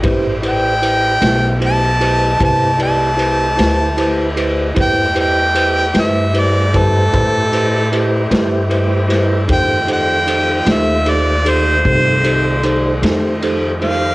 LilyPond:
<<
  \new Staff \with { instrumentName = "Harmonica" } { \time 12/8 \key a \minor \tempo 4. = 51 r8 g''4. a''4 a''8 a''2 r8 | g''8 g''4 e''8 d''8 a'2 r4. | g''8 g''4 e''8 d''8 c''2 r4 f''8 | }
  \new Staff \with { instrumentName = "Tine electric piano" } { \time 12/8 \key a \minor <e' g' b' c''>8 <e' g' b' c''>8 <e' g' b' c''>8 <e' g' b' c''>8 <e' g' b' c''>8 <e' g' b' c''>8 <e' g' b' c''>8 <e' g' b' d''>8 <e' g' b' c''>8 <e' g' b' c''>8 <e' g' b' c''>8 <e' g' b' c''>8 | <e' g' b' c''>8 <e' g' b' c''>8 <e' g' b' c''>8 <e' g' b' c''>8 <e' g' b' c''>8 <e' g' b' c''>8 <e' g' b' c''>8 <e' g' b' c''>8 <e' g' b' c''>8 <e' g' b' c''>8 <e' g' b' c''>8 <e' g' b' c''>8 | <ees' g' a' c''>8 <ees' g' a' c''>8 <ees' g' a' c''>8 <ees' g' a' c''>8 <ees' g' a' c''>8 <ees' g' a' c''>8 <ees' g' a' c''>8 <ees' g' a' c''>8 <ees' g' a' c''>8 <ees' g' a' c''>8 <ees' g' a' c''>8 <ees' g' a' c''>8 | }
  \new Staff \with { instrumentName = "Tonewheel organ" } { \time 12/8 \key a \minor <a e' g' c''>1. | <a e' g' c''>1. | <ees a f' c''>1. | }
  \new Staff \with { instrumentName = "Saxophone section" } { \time 12/8 \key a \minor << { r1. | r1. | f'2. g2. | } \\ { r1. | r1. | <a c'>1. | } >> }
  \new Staff \with { instrumentName = "Upright bass" } { \clef bass \time 12/8 \key a \minor a,,4. b,,4. c,4. d,4. | e,4. g,4. a,4. g,4. | f,4. ees,4. c,4. f,4. | }
  \new DrumStaff \with { instrumentName = "Drums" } \drummode { \time 12/8 <bd cymr>8 cymr8 cymr8 <cymr sn>8 cymr8 cymr8 <bd cymr>8 cymr8 cymr8 <cymr sn>8 cymr8 cymr8 | <bd cymr>8 cymr8 cymr8 <cymr sn>8 cymr8 <bd cymr>8 <bd cymr>8 cymr8 cymr8 <cymr sn>8 cymr8 <cymr sn>8 | <bd cymr>8 cymr8 cymr8 <cymr sn>8 cymr8 cymr8 <bd cymr>8 cymr8 cymr8 <cymr sn>8 cymr8 <cymr sn>8 | }
>>